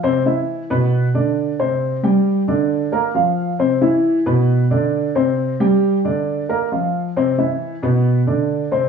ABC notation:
X:1
M:4/4
L:1/8
Q:1/4=135
K:C
V:1 name="Grand piano"
[C,Cc] [E,Ee]2 [B,,B,B]2 [D,Dd]2 [C,Cc]- | [C,Cc] [G,Gg]2 [D,Dd]2 [_B,_B_b] [F,Ff]2 | [C,Cc] [E,Ee]2 [B,,B,B]2 [D,Dd]2 [C,Cc]- | [C,Cc] [G,Gg]2 [D,Dd]2 [_B,_B_b] [F,Ff]2 |
[C,Cc] [E,Ee]2 [B,,B,B]2 [D,Dd]2 [C,Cc] |]